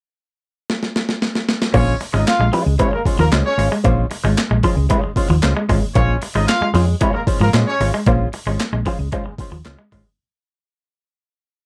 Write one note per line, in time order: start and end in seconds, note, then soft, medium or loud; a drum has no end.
0.70 snare medium
0.83 snare medium
0.96 snare medium
1.09 snare medium
1.22 snare medium
1.35 snare medium
1.49 snare loud
1.62 snare loud
1.74 1.93 A#1 loud
1.74 1.94 G#3 medium
1.74 1.84 A#3 medium
1.74 1.95 C#4 loud
1.74 1.95 F4 medium
1.74 1.95 C5 medium
1.74 1.95 C#5 loud
1.74 kick loud
1.74 crash medium
2.01 muted clean electric guitar stroke soft
2.01 muted hollow-body jazz guitar stroke soft
2.01 open hi-hat medium
2.13 2.23 G#1 medium
2.13 2.23 G#3 medium
2.13 2.30 G#3 soft
2.13 2.30 C#4 medium
2.13 2.25 D#4 medium
2.13 2.30 F4 medium
2.13 2.29 C5 soft
2.13 2.25 D#5 medium
2.27 2.48 F4 loud
2.27 2.48 F5 loud
2.27 muted clean electric guitar stroke soft
2.27 snare loud
2.27 clap medium
2.27 closed hi-hat loud
2.39 2.49 A#1 medium
2.39 2.50 G#3 medium
2.39 muted hollow-body jazz guitar stroke medium
2.53 2.63 F3 medium
2.53 2.73 G#3 medium
2.53 2.65 C#4 medium
2.53 2.65 F4 medium
2.53 2.64 C5 medium
2.53 open hi-hat medium
2.65 2.76 C#2 medium
2.65 muted hollow-body jazz guitar stroke medium
2.79 2.99 G#3 medium
2.79 2.89 G#3 medium
2.79 2.93 C#4 medium
2.79 2.90 C#4 medium
2.79 2.92 F4 medium
2.79 2.92 C5 medium
2.79 2.90 C#5 medium
2.79 kick medium
2.79 closed hi-hat medium
2.93 3.01 A#3 medium
2.93 3.01 A#4 medium
2.93 muted hollow-body jazz guitar stroke soft
2.93 muted clean electric guitar stroke soft
3.05 3.22 G#3 medium
3.05 3.19 C#4 medium
3.05 3.18 F4 medium
3.05 3.18 C5 medium
3.05 muted fingered electric bass stroke soft
3.05 kick medium
3.05 open hi-hat medium
3.19 3.28 D#2 medium
3.19 3.29 F3 medium
3.19 3.27 A#3 medium
3.19 3.27 A#4 loud
3.19 muted hollow-body jazz guitar stroke soft
3.32 3.41 C#2 medium
3.32 3.52 G#3 medium
3.32 3.42 G#3 medium
3.32 3.45 C#4 medium
3.32 3.44 F4 medium
3.32 3.44 C5 medium
3.32 snare loud
3.32 clap medium
3.32 closed hi-hat medium
3.45 3.67 C#4 loud
3.45 3.67 C#5 loud
3.45 muted hollow-body jazz guitar stroke soft
3.57 3.67 G#1 medium
3.57 3.74 G#3 medium
3.57 3.70 C#4 medium
3.57 3.70 F4 medium
3.57 3.70 C5 medium
3.57 muted clean electric guitar stroke soft
3.57 open hi-hat medium
3.71 3.81 G#3 medium
3.71 muted hollow-body jazz guitar stroke soft
3.84 4.04 A#1 loud
3.84 4.05 G#3 medium
3.84 3.94 A#3 medium
3.84 4.05 C#4 medium
3.84 4.05 F4 medium
3.84 4.05 C5 loud
3.84 kick loud
3.84 closed hi-hat medium
4.10 muted hollow-body jazz guitar stroke soft
4.10 muted clean electric guitar stroke soft
4.10 open hi-hat medium
4.24 4.34 G#1 loud
4.24 4.34 G#3 medium
4.24 4.40 G#3 soft
4.24 4.40 C#4 medium
4.24 4.40 F4 medium
4.24 4.40 C5 medium
4.37 muted clean electric guitar stroke soft
4.37 snare medium
4.37 clap medium
4.37 closed hi-hat loud
4.50 4.60 A#1 medium
4.50 4.60 G#3 medium
4.50 muted hollow-body jazz guitar stroke soft
4.63 4.74 F3 medium
4.63 4.84 G#3 medium
4.63 4.77 C#4 medium
4.63 4.76 F4 medium
4.63 4.76 C5 medium
4.63 kick medium
4.63 open hi-hat medium
4.77 4.86 C#2 medium
4.77 muted hollow-body jazz guitar stroke soft
4.89 5.10 G#3 medium
4.89 5.00 G#3 medium
4.89 5.03 C#4 medium
4.89 5.02 F4 medium
4.89 5.02 C5 medium
4.89 kick loud
4.89 closed hi-hat loud
5.03 muted hollow-body jazz guitar stroke soft
5.03 muted clean electric guitar stroke soft
5.16 5.32 G#3 medium
5.16 5.29 C#4 medium
5.16 5.29 F4 medium
5.16 5.28 C5 medium
5.16 muted fingered electric bass stroke soft
5.16 kick medium
5.16 open hi-hat medium
5.29 5.39 D#2 medium
5.29 5.39 F3 medium
5.29 muted hollow-body jazz guitar stroke soft
5.42 5.52 C#2 medium
5.42 5.63 G#3 medium
5.42 5.55 C#4 medium
5.42 5.55 F4 medium
5.42 5.55 C5 medium
5.42 muted clean electric guitar stroke soft
5.42 snare loud
5.42 clap medium
5.42 closed hi-hat medium
5.56 5.66 G#3 medium
5.56 muted hollow-body jazz guitar stroke soft
5.69 5.79 G#1 medium
5.69 5.85 G#3 medium
5.69 5.79 G#3 medium
5.69 5.81 C#4 medium
5.69 5.81 F4 medium
5.69 5.81 C5 medium
5.69 kick loud
5.69 open hi-hat medium
5.82 muted hollow-body jazz guitar stroke soft
5.95 6.14 A#1 loud
5.95 6.16 G#3 medium
5.95 6.05 A#3 medium
5.95 6.16 C#4 loud
5.95 6.16 C#4 medium
5.95 6.16 F4 medium
5.95 6.16 C5 medium
5.95 6.16 C#5 loud
5.95 kick loud
5.95 closed hi-hat medium
6.22 muted hollow-body jazz guitar stroke soft
6.22 muted clean electric guitar stroke soft
6.22 open hi-hat medium
6.35 6.44 G#1 medium
6.35 6.45 G#3 medium
6.35 6.52 G#3 soft
6.35 6.52 C#4 medium
6.35 6.45 D#4 medium
6.35 6.51 F4 medium
6.35 6.51 C5 medium
6.35 6.45 D#5 medium
6.47 6.69 F4 loud
6.47 6.69 F5 loud
6.47 muted clean electric guitar stroke soft
6.47 snare loud
6.47 clap medium
6.47 closed hi-hat medium
6.61 6.71 G#3 medium
6.61 muted fingered electric bass stroke soft
6.61 muted hollow-body jazz guitar stroke soft
6.74 6.93 F2 medium
6.74 6.85 F3 medium
6.74 6.95 G#3 medium
6.74 6.87 C#4 medium
6.74 6.87 F4 medium
6.74 6.86 C5 medium
6.74 open hi-hat medium
6.88 muted hollow-body jazz guitar stroke soft
7.00 7.21 G#3 medium
7.00 7.11 G#3 medium
7.00 7.11 C#4 medium
7.00 7.13 C#4 medium
7.00 7.13 F4 medium
7.00 7.12 C5 medium
7.00 7.11 C#5 medium
7.00 kick loud
7.00 closed hi-hat loud
7.14 7.22 A#3 medium
7.14 7.22 A#4 medium
7.14 muted hollow-body jazz guitar stroke medium
7.14 muted clean electric guitar stroke soft
7.27 7.43 G#3 medium
7.27 7.40 C#4 medium
7.27 7.40 F4 medium
7.27 7.39 C5 medium
7.27 muted fingered electric bass stroke soft
7.27 kick loud
7.27 open hi-hat medium
7.40 7.50 G#2 medium
7.40 7.51 F3 medium
7.40 7.49 A#3 medium
7.40 7.49 A#4 loud
7.40 muted hollow-body jazz guitar stroke soft
7.53 7.63 A#2 medium
7.53 7.74 G#3 medium
7.53 7.64 G#3 medium
7.53 7.66 C#4 medium
7.53 7.66 F4 medium
7.53 7.65 C5 medium
7.53 snare loud
7.53 clap medium
7.53 closed hi-hat medium
7.67 7.88 C#4 loud
7.67 7.88 C#5 loud
7.67 muted hollow-body jazz guitar stroke soft
7.80 7.90 G#1 loud
7.80 7.96 G#3 medium
7.80 7.94 C#4 medium
7.80 7.93 F4 medium
7.80 7.93 C5 medium
7.80 muted clean electric guitar stroke soft
7.80 open hi-hat medium
7.94 8.03 G#3 medium
7.94 muted hollow-body jazz guitar stroke soft
8.06 8.26 A#1 loud
8.06 8.27 G#3 medium
8.06 8.17 A#3 medium
8.06 8.27 C#4 medium
8.06 8.28 F4 loud
8.06 8.28 C5 loud
8.06 kick loud
8.06 closed hi-hat medium
8.33 muted hollow-body jazz guitar stroke soft
8.33 muted clean electric guitar stroke soft
8.33 open hi-hat medium
8.46 8.56 G#1 medium
8.46 8.56 G#3 medium
8.46 8.63 G#3 soft
8.46 8.63 C#4 medium
8.46 8.63 F4 medium
8.46 8.63 C5 medium
8.60 muted clean electric guitar stroke soft
8.60 snare loud
8.60 clap medium
8.60 closed hi-hat loud
8.73 8.82 A#1 medium
8.73 8.82 G#3 medium
8.73 muted hollow-body jazz guitar stroke medium
8.86 8.96 F3 medium
8.86 9.07 G#3 medium
8.86 9.00 C#4 medium
8.86 9.00 F4 medium
8.86 8.99 C5 medium
8.86 kick medium
8.86 open hi-hat medium
8.99 9.08 C#2 medium
8.99 muted hollow-body jazz guitar stroke soft
9.12 9.22 G#3 medium
9.12 9.33 G#3 medium
9.12 9.26 C#4 medium
9.12 9.26 F4 medium
9.12 9.25 C5 medium
9.12 kick medium
9.12 closed hi-hat medium
9.26 muted clean electric guitar stroke soft
9.26 muted hollow-body jazz guitar stroke soft
9.38 9.55 G#3 medium
9.38 9.52 C#4 medium
9.38 9.52 F4 medium
9.38 9.51 C5 medium
9.38 muted fingered electric bass stroke soft
9.38 kick medium
9.38 open hi-hat medium
9.52 9.61 D#2 medium
9.52 9.62 F3 medium
9.52 muted hollow-body jazz guitar stroke soft
9.65 9.75 C#2 medium
9.65 9.86 G#3 medium
9.65 9.79 C#4 medium
9.65 9.78 F4 medium
9.65 9.78 C5 medium
9.65 muted clean electric guitar stroke soft
9.65 snare loud
9.65 clap medium
9.65 closed hi-hat medium
9.79 9.88 G#3 medium
9.92 10.02 G#1 medium
9.92 10.02 G#3 medium
9.92 10.08 G#3 medium
9.92 10.05 C#4 medium
9.92 10.05 F4 medium
9.92 10.04 C5 medium
9.92 kick loud
9.92 open hi-hat medium
10.06 muted hollow-body jazz guitar stroke soft